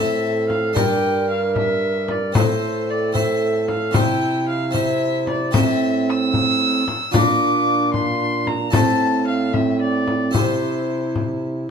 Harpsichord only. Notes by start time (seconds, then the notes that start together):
Already playing: A2 C4 E4 A4
0.73 G2 D4 G4 A#4
2.32 A2 C4 E4 C5
3.13 C4 E4 C5
3.91 C4 E4 C5
3.95 C3
4.71 C4 E4 C5
5.51 A2 C4 A4 C5
7.11 A#2 D4 F4 A#4
8.70 A2 E4 A4 C5
10.31 E4 G4 C5
10.35 C3